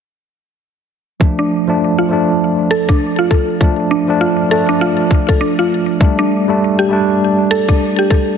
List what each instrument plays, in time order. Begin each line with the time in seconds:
1.20 tine electric piano F3 A3 D4, kick
1.39 synth pluck D4
1.67 tine electric piano F3 A3 D4
1.98 synth pluck F4
2.09 tine electric piano F3 A3
2.13 tine electric piano D4
2.71 synth pluck A4
2.89 synth pluck D4, kick
3.19 synth pluck F4
3.31 synth pluck A4, kick
3.60 tine electric piano F3 A3 D4, kick
3.91 synth pluck D4
4.08 tine electric piano F3 A3 D4
4.21 synth pluck F4
4.49 tine electric piano F3 A3, synth pluck A4
4.53 tine electric piano D4
4.69 synth pluck D4
4.81 synth pluck F4
5.11 kick
5.29 synth pluck A4, kick
5.41 synth pluck D4
5.59 synth pluck F4
6.00 tine electric piano G3 A3 D4, kick
6.19 synth pluck D4
6.48 tine electric piano G3 A3 D4
6.79 synth pluck G4
6.89 tine electric piano G3 A3
6.93 tine electric piano D4
7.51 synth pluck A4
7.69 synth pluck D4, kick
7.99 synth pluck G4
8.10 synth pluck A4, kick